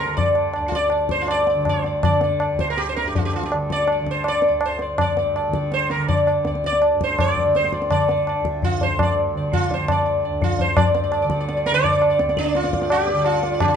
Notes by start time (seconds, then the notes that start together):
Already playing: D2 G2 D3 A#4
0.06 D3
0.17 D5, tabla tin, tabla ge
0.35 tabla na
0.54 D2 D5, tabla na
0.68 F4, tabla ke
0.75 D5
0.90 D5, tabla na
1.07 G2, tabla ke
1.11 C5
1.21 F4
1.28 D5, tabla na
1.47 D5, tabla te
1.55 D3
1.65 C5, tabla na, tabla ge
1.84 D5, tabla te
2.03 D3 D5, tabla na, tabla ge
2.21 D5, tabla te
2.40 D5, tabla na
2.53 D2
2.59 C5, tabla ke
2.70 A#4
2.77 G4, tabla te
2.89 C5
2.96 A#4, tabla te
3.04 G2 G4
3.15 F4, tabla tin, tabla ge
3.25 G4
3.34 F4, tabla na
3.43 G4, tabla ke
3.52 D3, tabla na
3.70 D5, tabla ke
3.88 tabla na
3.92 D5
4.00 D3
4.07 tabla ke
4.11 C5
4.24 tabla na
4.28 D5
4.42 tabla te
4.48 D2 D5
4.61 tabla na
4.66 C5
4.79 D5, tabla te
4.98 G2 D5, tabla na, tabla ge
5.17 D5, tabla te
5.36 D5, tabla na
5.48 D3
5.53 D5, tabla ke
5.72 C5, tabla te
5.90 A#4, tabla te
5.96 D3
6.08 D5, tabla tin, tabla ge
6.27 D5, tabla na
6.44 D2 D5, tabla te
6.55 tabla te
6.64 D5, tabla ke
6.73 tabla te
6.81 D5, tabla na
6.94 G2
7.01 C5, tabla ke
7.19 D5, tabla na, tabla ge
7.37 tabla ge
7.43 D3
7.55 C5, tabla te
7.64 tabla te
7.73 D5, tabla ke
7.82 tabla te
7.89 D3 D5, tabla na, tabla ge
8.09 D5, tabla te
8.27 D5, tabla na
8.40 D2
8.45 tabla ke
8.62 F4, tabla tin, tabla ge
8.81 C5, tabla tin, tabla ge
8.87 G2
8.99 D5, tabla na, tabla ge
9.35 D3 D5
9.53 F4, tabla tin, tabla ge
9.71 C5, tabla tin, tabla ge
9.80 D3
9.88 D5, tabla na, tabla ge
10.06 D5
10.25 D5
10.29 D2
10.42 F4, tabla tin, tabla ge
10.59 C5, tabla tin, tabla ge
10.77 G2 D5, tabla na, tabla ge
10.86 D5
10.95 D5, tabla te
11.04 D5
11.12 D5, tabla na
11.22 D3 D5
11.30 D5, tabla ke
11.40 D5
11.48 D5, tabla te
11.57 D5
11.66 A#4, tabla te
11.72 D3 D5
11.84 tabla tin, tabla ge
11.93 D5
12.01 D5, tabla na
12.10 D5
12.18 D2 D5, tabla te
12.29 D5, tabla te
12.37 D4, tabla ke
12.46 D5, tabla te
12.55 F4, tabla te
12.64 G2 D5, tabla te
12.73 D5, tabla ke
12.82 D5, tabla te
12.90 G4, tabla na
13.00 D5
13.07 D5, tabla te
13.13 D3
13.18 D5
13.25 F4, tabla na
13.35 D5
13.43 D5, tabla te
13.54 D5
13.60 D3 G4, tabla na, tabla ge
13.68 F4